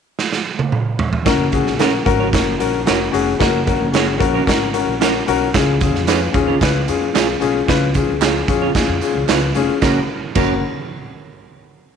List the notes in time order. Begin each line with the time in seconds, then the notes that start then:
0.19 snare
0.33 snare
0.59 high tom
0.72 mid tom
0.99 floor tom
1.13 floor tom
1.25 F#1 C#4 F#4 A#4, kick, snare, closed hi-hat
1.52 C#4 F#4 G#4, kick, closed hi-hat
1.67 A#1, snare
1.77 C#4 F#4 A#4 C#5, snare, closed hi-hat
2.04 G#1 C#4 F#4 A#4, kick, closed hi-hat
2.20 C#4 F#4 A#4 C#5
2.32 F#1 C#4 F#4 A#4, kick, snare, closed hi-hat
2.58 A#1 C#4 F#4 A#4, closed hi-hat
2.84 F1 C#4 F#4 A#4, snare, closed hi-hat
2.89 A#4 C#5
3.12 F1 C#4 F#4 G#4, closed hi-hat
3.38 F#1 C#4 F#4 A#4, kick, snare, closed hi-hat
3.66 C#4 F#4 A#4, kick, closed hi-hat
3.81 F#1
3.92 C#4 F#4 G#4 A#4 C#5, snare, closed hi-hat
4.18 A#1 C#4 F#4 A#4, kick, closed hi-hat
4.34 C#4 F#4 A#4 C#5
4.46 G#1 C#4 F#4 A#4, kick, snare, closed hi-hat
4.73 C#4 F#4 A#4, closed hi-hat
4.87 A#1
5.00 C#4 F#4 A#4 C#5, snare, closed hi-hat
5.27 B1 C#4 F#4 A#4, closed hi-hat
5.53 C#2 C#4 F4 G#4, kick, snare, closed hi-hat, tambourine
5.81 C#4 F4 G#4, kick, closed hi-hat, tambourine
5.95 F2, snare
6.06 C#4 F4 G#4 B4 C#5, snare, clap, closed hi-hat, tambourine
6.32 D#2 C#4 F4 G#4, kick, closed hi-hat, tambourine
6.47 C#4 F4 G#4 C#5
6.59 C#2 C#4 F4 B4, kick, snare, closed hi-hat, tambourine
6.88 F2 C#4 F4 G#4, closed hi-hat, tambourine
7.14 B1 C#4 F4 G#4 C#5, snare, clap, closed hi-hat, tambourine
7.40 B1 C#4 F4 G#4, closed hi-hat, tambourine
7.67 C#2 C#4 F4 B4, kick, snare, closed hi-hat
7.94 C#4 F4 G#4, kick, closed hi-hat, tambourine
8.09 C#2
8.21 C#4 F4 G#4 C#5, snare, clap, closed hi-hat, tambourine
8.48 F2 C#4 F4 G#4, kick, closed hi-hat, tambourine
8.62 C#4 F4 G#4 C#5
8.75 D#2 C#4 F4 G#4, kick, snare, closed hi-hat, tambourine
8.89 F2
9.01 C#4 F4 G#4, closed hi-hat, tambourine
9.15 C#2
9.28 C#2 C#4 F4 G#4 B4 C#5, snare, clap, closed hi-hat, tambourine
9.55 F1 C#4 F4 G#4, closed hi-hat, tambourine
9.81 F#1 C#4 F#4 A#4 C#5, kick, snare, tambourine
10.35 F#1 C#4 F#4 A#4 C#5, kick, crash, tambourine